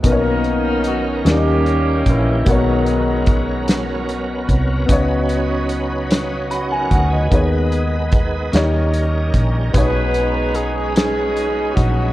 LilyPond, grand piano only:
<<
  \new Staff \with { instrumentName = "Grand piano" } { \time 6/8 \key gis \minor \tempo 4. = 49 << { r2. | r2. | r2 b''16 gis''16 fis''16 dis''16~ | dis''16 r2 r8. |
r2. | } \\ { <b dis' ais' b' cis''>4. <cis' g' ais' d'' dis''>4. | <ais b fis' ais' cis''>2. | <b dis' fis' cis''>2. | <b dis' gis' cis'' dis''>4. <ais dis' g' cis''>4. |
<b dis' gis' cis''>2. | } >> }
  \new Staff \with { instrumentName = "Grand piano" } { \clef bass \time 6/8 \key gis \minor b,4. dis4. | b,4. r4. | cis4. r4. | dis4. dis4. |
b,4. r4. | }
>>